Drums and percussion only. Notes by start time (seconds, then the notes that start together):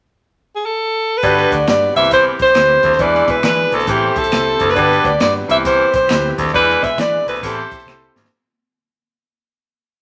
1.23 kick, closed hi-hat
1.38 snare
1.52 kick, closed hi-hat
1.67 finger snap, snare, closed hi-hat
1.96 closed hi-hat
2.04 closed hi-hat
2.11 kick, closed hi-hat
2.39 kick, closed hi-hat
2.47 closed hi-hat
2.54 finger snap, snare, closed hi-hat
2.83 kick, closed hi-hat
2.92 snare
2.99 kick, closed hi-hat
3.14 snare
3.28 kick, closed hi-hat
3.43 finger snap, snare, closed hi-hat
3.72 closed hi-hat
3.80 closed hi-hat
3.87 kick, closed hi-hat
4.16 kick, closed hi-hat
4.24 closed hi-hat
4.32 finger snap, snare, closed hi-hat
4.59 kick, closed hi-hat
4.69 snare
4.76 kick, closed hi-hat
4.91 snare
5.05 kick, closed hi-hat
5.20 finger snap, snare, closed hi-hat
5.49 closed hi-hat
5.65 kick, closed hi-hat
5.93 kick, closed hi-hat
6.09 finger snap, snare, closed hi-hat
6.38 kick, closed hi-hat
6.48 snare
6.54 kick, closed hi-hat
6.69 snare
6.83 kick, closed hi-hat
6.98 finger snap, snare, closed hi-hat
7.28 closed hi-hat
7.36 closed hi-hat
7.43 kick, closed hi-hat
7.71 kick, closed hi-hat
7.79 closed hi-hat
7.88 finger snap, snare
8.16 snare
8.24 snare